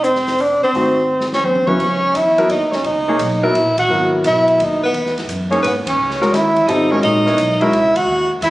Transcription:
0.00 0.58 F1 medium
0.00 0.42 C4 medium
0.00 closed hi-hat soft
0.05 0.43 C5 medium
0.15 snare soft
0.27 snare soft
0.27 open hi-hat soft
0.38 0.63 D4 medium
0.38 0.63 D5 medium
0.38 open hi-hat soft
0.62 1.29 C4 medium
0.62 1.29 C5 medium
0.62 muted upright bass stroke soft
0.73 1.63 G#1 medium
0.73 0.95 A3 soft
0.73 0.96 C4 soft
0.73 0.96 D#4 soft
0.73 0.95 F#4 medium
0.73 open hi-hat soft
1.20 snare soft
1.33 1.48 C#4 medium
1.33 1.46 C#5 medium
1.33 snare soft
1.44 1.70 C4 medium
1.44 1.68 C5 medium
1.44 mid tom soft
1.55 mid tom medium
1.67 1.78 D2 medium
1.67 1.78 C#3 soft
1.67 1.78 F#3 soft
1.67 1.79 B3 soft
1.67 2.17 C#4 medium
1.67 1.78 E4 soft
1.67 1.78 B4 medium
1.67 2.16 C#5 medium
1.67 mid tom medium
1.79 2.13 C#2 medium
1.79 kick medium
1.79 crash medium
2.14 2.48 E2 medium
2.14 2.50 E4 medium
2.14 2.50 E5 medium
2.14 hi-hat pedal medium
2.14 ride medium
2.38 2.49 F#3 medium
2.38 2.49 B3 medium
2.38 2.49 E4 medium
2.38 2.49 A#4 medium
2.38 ride soft
2.49 2.83 D#2 medium
2.49 2.77 D#4 medium
2.49 2.73 D#5 medium
2.49 ride medium
2.71 2.85 C#4 medium
2.71 2.84 C#5 medium
2.71 snare soft
2.84 3.18 C#2 medium
2.84 3.45 D#4 medium
2.84 3.45 D#5 medium
2.84 ride soft
3.08 3.19 A#3 medium
3.08 3.19 D#4 medium
3.08 3.19 G#4 medium
3.08 3.19 C#5 medium
3.19 3.53 B1 medium
3.19 hi-hat pedal soft
3.19 ride medium
3.43 3.54 F#3 medium
3.43 3.54 B3 medium
3.43 3.54 E4 medium
3.43 3.78 E4 medium
3.43 3.54 A#4 medium
3.43 3.78 E5 medium
3.53 3.88 A#1 medium
3.53 ride medium
3.77 4.10 F#4 loud
3.77 4.11 F#5 medium
3.77 kick medium
3.77 ride medium
3.88 4.23 G#1 medium
3.88 4.87 F#3 medium
3.88 4.87 B3 soft
3.88 4.87 E4 soft
3.88 4.87 A#4 medium
4.24 4.58 B1 medium
4.24 4.65 E4 loud
4.24 4.62 E5 medium
4.24 hi-hat pedal soft
4.24 ride medium
4.48 ride soft
4.58 4.92 D#2 medium
4.58 4.83 D#5 medium
4.58 ride medium
4.63 4.84 D#4 medium
4.83 5.16 B3 medium
4.83 5.15 B4 medium
4.93 5.27 E2 medium
4.93 ride medium
5.06 snare soft
5.18 snare soft
5.18 ride soft
5.27 5.62 F#2 medium
5.27 hi-hat pedal medium
5.27 ride medium
5.51 5.62 A#3 medium
5.51 5.64 C#4 medium
5.51 5.62 D#4 medium
5.51 5.62 G#4 medium
5.51 5.62 C#5 medium
5.51 ride soft
5.62 5.84 G#2 medium
5.62 5.73 B4 medium
5.62 ride medium
5.67 5.76 B3 medium
5.87 6.36 C#4 medium
5.87 6.34 C#5 medium
5.87 muted upright bass stroke soft
5.87 kick medium
5.87 ride medium
5.97 6.31 C#2 medium
6.10 snare soft
6.21 6.32 G#3 medium
6.21 6.32 C#4 medium
6.21 6.32 F#4 medium
6.21 6.32 A#4 medium
6.21 snare soft
6.32 6.66 D#2 medium
6.32 6.71 E4 medium
6.32 6.68 E5 medium
6.32 snare soft
6.32 hi-hat pedal medium
6.32 ride medium
6.56 kick medium
6.56 ride soft
6.67 7.01 G#1 medium
6.67 6.88 G3 medium
6.67 6.89 C4 medium
6.67 6.93 D#4 medium
6.67 6.89 F4 medium
6.67 6.89 A4 medium
6.67 6.93 D#5 medium
6.67 ride medium
6.91 7.21 G#3 medium
6.91 7.21 C#4 medium
6.91 7.03 C#4 medium
6.91 7.21 F#4 soft
6.91 7.21 A#4 medium
6.91 7.02 C#5 medium
7.02 7.36 A#1 medium
7.02 7.62 D#4 loud
7.02 7.62 D#5 medium
7.02 ride medium
7.26 7.37 B3 medium
7.26 7.37 E4 medium
7.26 7.37 A#4 medium
7.26 7.37 C#5 medium
7.26 snare soft
7.36 7.70 B1 medium
7.36 hi-hat pedal medium
7.36 ride medium
7.61 7.71 G#3 medium
7.61 7.71 C#4 medium
7.61 7.98 E4 medium
7.61 7.72 F#4 medium
7.61 7.72 A#4 medium
7.61 7.97 E5 medium
7.61 ride soft
7.71 8.05 C#2 medium
7.71 ride medium
7.95 8.31 F#4 loud
7.95 8.30 F#5 medium
7.95 kick medium
7.95 ride medium
8.07 8.40 D#2 medium
8.41 8.50 E2 medium
8.41 8.50 E4 loud
8.41 8.50 E5 medium
8.41 snare soft
8.41 hi-hat pedal medium
8.41 ride medium

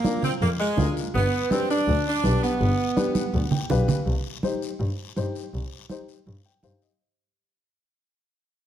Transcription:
0.00 0.20 A#3 medium
0.04 0.30 D4 medium
0.04 0.30 F4 medium
0.04 0.30 A#4 medium
0.04 high conga medium
0.04 short guiro medium
0.22 0.32 C4 medium
0.22 low conga medium
0.22 short guiro medium
0.41 0.49 F2 loud
0.41 0.50 A#3 medium
0.41 high conga soft
0.41 long guiro medium
0.60 0.94 G#3 loud
0.77 0.86 D2 medium
0.77 1.03 D4 medium
0.77 1.03 F4 medium
0.77 1.03 A#4 medium
0.77 high conga medium
0.77 low conga medium
0.77 short guiro medium
0.97 short guiro medium
1.14 1.23 G1 loud
1.14 1.48 B3 loud
1.14 high conga soft
1.14 long guiro medium
1.50 1.69 C4 loud
1.50 1.76 D4 medium
1.50 1.76 G4 medium
1.50 1.77 B4 medium
1.50 high conga medium
1.50 short guiro medium
1.70 2.04 D4 loud
1.70 short guiro medium
1.88 1.96 D2 medium
1.88 high conga soft
1.88 long guiro medium
2.08 2.41 D4 loud
2.24 2.32 B1 medium
2.24 2.49 D4 medium
2.24 2.50 G4 medium
2.24 2.50 B4 medium
2.24 high conga medium
2.24 short guiro medium
2.43 3.66 B3 medium
2.43 short guiro medium
2.60 2.69 G1 medium
2.60 high conga soft
2.60 long guiro medium
2.96 3.22 D4 medium
2.96 3.22 G4 medium
2.96 3.23 B4 medium
2.96 high conga medium
2.96 short guiro medium
3.15 high conga medium
3.15 short guiro medium
3.34 3.42 D2 medium
3.34 long guiro medium
3.51 3.69 G5 medium
3.51 low conga medium
3.70 3.78 B1 medium
3.70 3.96 D4 medium
3.70 3.96 G4 medium
3.70 3.96 B4 medium
3.70 4.04 F5 medium
3.70 low conga medium
3.70 short guiro medium
3.88 low conga medium
3.88 short guiro medium
4.06 4.14 C2 medium
4.06 high conga soft
4.06 long guiro medium
4.43 4.69 D#4 medium
4.43 4.69 G4 medium
4.43 4.69 C5 medium
4.43 high conga medium
4.43 short guiro medium
4.62 short guiro medium
4.80 4.88 G2 loud
4.80 high conga soft
4.80 long guiro medium
5.16 5.25 G2 medium
5.16 5.42 D#4 medium
5.16 5.42 G4 medium
5.16 5.42 C5 medium
5.16 high conga medium
5.16 short guiro medium
5.35 short guiro medium
5.53 5.62 C2 medium
5.53 high conga soft
5.53 long guiro medium
5.89 6.16 D#4 medium
5.89 6.16 G4 medium
5.89 6.16 C5 medium
5.89 high conga medium
5.89 short guiro medium
6.08 short guiro medium
6.27 6.35 G2 medium
6.27 high conga soft
6.27 long guiro medium
6.46 6.62 G5 medium
6.63 6.72 G2 medium
6.63 6.89 D#4 medium
6.63 6.89 G4 medium
6.63 6.89 C5 medium
6.63 6.80 F5 medium
6.63 high conga medium
6.63 short guiro medium
6.82 6.99 D#5 medium
6.82 short guiro medium

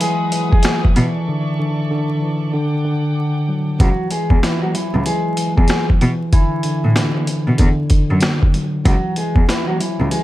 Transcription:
0.00 0.33 E3 medium
0.00 0.96 F#3 medium
0.00 0.49 G#3 medium
0.00 0.49 G#4 medium
0.00 0.94 B4 medium
0.00 0.94 E5 medium
0.00 0.92 F#5 medium
0.00 0.94 D#6 medium
0.00 closed hi-hat loud
0.32 0.94 E3 medium
0.32 closed hi-hat medium
0.52 0.81 G#3 medium
0.52 0.80 G#4 medium
0.52 kick medium
0.63 snare loud
0.63 snare medium
0.63 closed hi-hat loud
0.85 kick medium
0.95 1.05 B2 loud
0.95 2.21 E3 medium
0.95 3.77 A4 medium
0.95 2.52 D5 medium
0.95 2.52 E5 medium
0.95 2.52 C#6 medium
0.95 closed hi-hat medium
1.28 1.58 D3 medium
1.59 1.89 D3 medium
1.91 2.52 D3 medium
2.22 2.54 E3 medium
2.53 2.84 D3 medium
2.53 3.79 F#5 medium
2.53 3.79 G5 medium
2.53 3.79 D6 medium
2.85 3.80 D3 medium
3.48 3.80 F#3 medium
3.79 3.88 C#2 loud
3.79 4.10 E3 medium
3.79 4.09 F#3 medium
3.79 4.09 F#4 loud
3.79 kick loud
3.79 closed hi-hat medium
4.11 4.42 E3 medium
4.11 4.40 G#3 medium
4.11 4.40 G#4 medium
4.11 closed hi-hat medium
4.30 4.38 E2 medium
4.30 kick medium
4.43 5.05 E3 medium
4.43 4.61 E3 medium
4.43 4.60 E4 medium
4.43 snare loud
4.43 snare medium
4.43 closed hi-hat loud
4.62 4.74 F#3 medium
4.62 4.73 F#4 medium
4.74 5.04 E3 medium
4.74 6.01 F#3 medium
4.74 5.03 E4 medium
4.74 closed hi-hat medium
4.95 5.03 C#2 medium
5.06 5.37 E3 medium
5.06 5.55 G#3 medium
5.06 5.54 G#4 medium
5.06 closed hi-hat medium
5.37 6.00 E3 medium
5.37 closed hi-hat medium
5.57 5.66 E2 medium
5.57 5.86 G#3 medium
5.57 5.86 G#4 medium
5.57 kick medium
5.68 snare loud
5.68 snare medium
5.68 closed hi-hat loud
5.90 kick medium
6.01 6.10 B2 loud
6.01 7.26 E3 medium
6.01 closed hi-hat medium
6.33 6.63 D3 medium
6.33 7.75 E3 medium
6.33 7.74 E4 loud
6.33 kick loud
6.33 closed hi-hat medium
6.63 6.95 D3 medium
6.63 closed hi-hat medium
6.84 6.92 A2 medium
6.96 7.57 D3 medium
6.96 snare loud
6.96 closed hi-hat loud
7.27 7.59 E3 medium
7.27 closed hi-hat medium
7.47 7.55 B2 medium
7.58 7.68 E2 loud
7.58 7.89 D3 medium
7.58 kick loud
7.58 closed hi-hat medium
7.90 8.85 D3 medium
7.90 kick loud
7.90 closed hi-hat medium
8.11 8.19 F#2 medium
8.20 snare loud
8.20 snare medium
8.20 closed hi-hat loud
8.43 kick medium
8.54 8.85 F#3 medium
8.54 closed hi-hat medium
8.85 8.94 C#2 loud
8.85 9.15 E3 medium
8.85 9.14 F#3 medium
8.85 9.14 F#4 loud
8.85 kick loud
8.85 closed hi-hat medium
9.16 9.48 E3 medium
9.16 9.46 G#3 medium
9.16 9.46 G#4 medium
9.16 closed hi-hat medium
9.36 9.44 E2 medium
9.36 kick medium
9.49 10.10 E3 medium
9.49 9.67 E3 medium
9.49 9.66 E4 medium
9.49 snare loud
9.49 closed hi-hat medium
9.67 9.79 F#3 medium
9.67 9.79 F#4 medium
9.80 10.09 E3 medium
9.80 10.23 F#3 medium
9.80 10.09 E4 medium
9.80 closed hi-hat medium
10.00 10.08 C#2 medium
10.11 10.23 E3 medium
10.11 10.23 G#3 medium
10.11 10.23 G#4 medium
10.11 closed hi-hat medium

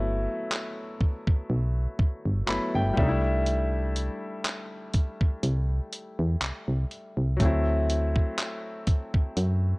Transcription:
0.00 0.28 G1 loud
0.00 2.42 F#3 medium
0.00 2.44 A3 medium
0.00 2.45 B3 medium
0.00 2.47 E4 medium
0.52 clap loud
1.01 kick medium
1.27 kick medium
1.50 1.87 B1 loud
1.99 kick medium
2.26 2.43 G1 medium
2.46 2.59 G1 soft
2.46 2.97 F#3 medium
2.46 2.95 A3 medium
2.46 2.98 B3 medium
2.46 2.73 B5 medium
2.46 clap loud
2.51 2.99 E4 medium
2.75 2.92 G1 medium
2.75 2.96 G5 medium
2.93 4.09 C2 loud
2.93 6.85 G3 medium
2.93 6.86 A3 medium
2.93 kick loud
2.98 6.88 D4 medium
2.98 3.43 E5 medium
3.02 3.07 D#4 medium
3.08 6.92 E4 medium
3.46 closed hi-hat medium
3.96 closed hi-hat medium
4.45 clap loud
4.45 closed hi-hat medium
4.93 kick medium
4.93 closed hi-hat medium
5.21 kick medium
5.43 5.81 C2 medium
5.43 closed hi-hat medium
5.93 closed hi-hat medium
6.19 6.36 E2 medium
6.41 6.52 C2 soft
6.41 clap loud
6.41 closed hi-hat medium
6.68 6.85 C2 medium
6.91 closed hi-hat medium
7.17 7.41 C2 medium
7.37 8.15 D2 loud
7.37 9.79 F#3 medium
7.37 9.79 A3 medium
7.37 kick loud
7.37 closed hi-hat medium
7.42 9.79 C4 medium
7.42 9.79 E4 medium
7.90 closed hi-hat medium
8.16 kick medium
8.38 clap loud
8.38 closed hi-hat medium
8.87 kick medium
8.87 closed hi-hat medium
9.14 kick medium
9.37 9.74 F#2 medium
9.37 closed hi-hat medium

